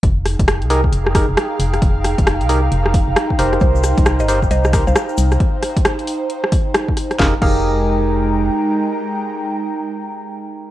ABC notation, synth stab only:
X:1
M:4/4
L:1/8
Q:"Swing 16ths" 1/4=134
K:Fm
V:1 name="Synth stab"
z3 [EGAB] z [EGAB] z2 | z3 [EGAB] z3 [EGBc]- | [EGBc]3 [EGBc] z [EGBc] z2 | z8 |
[EGAB] [EGAB]6- [EGAB]- | [EGAB]8 |]